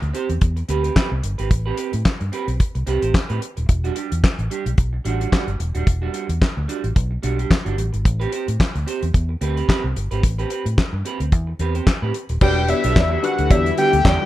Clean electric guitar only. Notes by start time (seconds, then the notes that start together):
0.02 muted clean electric guitar stroke
0.13 C4 G4 C5
0.29 muted clean electric guitar stroke
0.41 muted clean electric guitar stroke
0.57 muted clean electric guitar stroke
0.68 C4 G4 B4
0.83 C4 G4 B4
0.95 C4 G4 B4
1.11 muted clean electric guitar stroke
1.23 muted clean electric guitar stroke
1.38 C4 G4 B4
1.50 muted clean electric guitar stroke
1.66 C4 G4 B4
1.77 C4 G4 B4
1.93 muted clean electric guitar stroke
2.05 muted clean electric guitar stroke
2.20 muted clean electric guitar stroke
2.32 C4 G4 B4
2.47 muted clean electric guitar stroke
2.60 muted clean electric guitar stroke
2.75 muted clean electric guitar stroke
2.87 C4 G4 B4
3.02 C4 G4 C5
3.29 C4 G4 B4
3.41 muted clean electric guitar stroke
3.57 muted clean electric guitar stroke
3.69 muted clean electric guitar stroke
3.84 G3 D4 F#4
3.96 G3 D4 G4
4.11 muted clean electric guitar stroke
4.39 muted clean electric guitar stroke
4.50 G3 D4 G4
4.66 muted clean electric guitar stroke
4.78 muted clean electric guitar stroke
4.93 muted clean electric guitar stroke
5.05 G3 D4 F#4
5.20 G3 D4 F#4
5.32 G3 D4 F#4
5.48 muted clean electric guitar stroke
5.60 muted clean electric guitar stroke
5.75 G3 D4 F#4
5.87 muted clean electric guitar stroke
6.02 G3 D4 F#4
6.13 G3 D4 F#4
6.29 muted clean electric guitar stroke
6.56 muted clean electric guitar stroke
6.68 G3 D4 F#4
6.84 muted clean electric guitar stroke
6.96 muted clean electric guitar stroke
7.11 muted clean electric guitar stroke
7.23 G3 D4 F#4
7.38 G3 D4 G4
7.65 G3 D4 F#4
7.77 muted clean electric guitar stroke
7.93 muted clean electric guitar stroke
8.05 muted clean electric guitar stroke
8.20 C4 G4 B4
8.32 C4 G4 C5
8.48 muted clean electric guitar stroke
8.59 muted clean electric guitar stroke
8.74 muted clean electric guitar stroke
8.86 C4 G4 C5
9.02 muted clean electric guitar stroke
9.14 muted clean electric guitar stroke
9.29 muted clean electric guitar stroke
9.41 C4 G4 B4
9.56 C4 G4 B4
9.68 C4 G4 B4
9.84 muted clean electric guitar stroke
9.96 muted clean electric guitar stroke
10.11 C4 G4 B4
10.23 muted clean electric guitar stroke
10.39 C4 G4 B4
10.50 C4 G4 B4
10.66 muted clean electric guitar stroke
10.78 muted clean electric guitar stroke
10.93 muted clean electric guitar stroke
11.05 C4 G4 B4
11.20 muted clean electric guitar stroke
11.32 muted clean electric guitar stroke
11.47 muted clean electric guitar stroke
11.60 C4 G4 B4
11.75 C4 G4 C5
11.87 muted clean electric guitar stroke
12.02 C4 G4 B4
12.15 muted clean electric guitar stroke
12.30 muted clean electric guitar stroke
12.42 G3 D4 F#4
12.57 muted clean electric guitar stroke
12.69 muted clean electric guitar stroke
12.84 G3 D4 G4
13.11 G3 D4 F#4
13.23 G3 D4 F#4
13.39 muted clean electric guitar stroke
13.66 muted clean electric guitar stroke
13.78 G3 D4 F#4
13.93 muted clean electric guitar stroke
14.20 muted clean electric guitar stroke